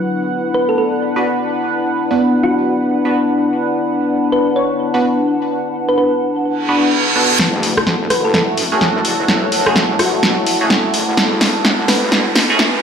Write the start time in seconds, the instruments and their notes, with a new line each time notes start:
Already playing: ambient pad B3 E4 B4, analog synth pad D4 B4 F#5
0.24 ambient pad D4
0.40 ambient pad A5
0.54 synth pluck B4
0.69 synth pluck A4
0.78 synth pluck A4
1.16 synth stab B3 D4 F#4 B4
2.11 synth stab B3 D4 F#4 B4
2.43 synth pluck F#4
3.05 synth stab B3 D4 F#4 B4
4.32 synth pluck B4
4.56 synth pluck C#5
4.94 synth stab B3 D4 F#4 B4
5.89 synth pluck B4
5.98 synth pluck B4
6.45 reverse cymbal
6.69 synth stab B3 D4 F#4 B4
7.16 synth stab B3 D4 F#4 A4
7.39 wobble bass F#1, analog synth pad A3 F#4 A4, ambient pad E4, snare, riser
7.63 open hi-hat
7.77 cross-stick
7.87 wobble bass E1, snare
8.10 wobble bass F#1, synth pluck B4, cross-stick, open hi-hat
8.25 synth pluck A4
8.34 synth pluck A4, snare
8.56 wobble bass F#2, ambient pad C#5, open hi-hat
8.72 synth stab A3 C#4 F#4 G#4
8.81 snare
9.05 wobble bass F#1, open hi-hat
9.28 wobble bass F#1, snare
9.52 open hi-hat
9.66 synth stab A3 C#4 F#4 G#4, cross-stick
9.76 wobble bass E1, snare
9.99 wobble bass A1, synth pluck F#4, cross-stick, open hi-hat
10.23 snare
10.47 open hi-hat
10.61 wobble bass F#1, synth stab A3 C#4 F#4 G#4
10.70 snare
10.94 wobble bass F#1, open hi-hat
11.17 wobble bass F#1, snare
11.41 snare, open hi-hat
11.65 wobble bass E1, snare
11.86 wobble bass F#1, ambient pad B4, synth pluck B4, snare, open hi-hat
12.12 snare
12.36 wobble bass F#2, snare, open hi-hat
12.50 synth stab A3 C#4 F#4 G#4
12.59 snare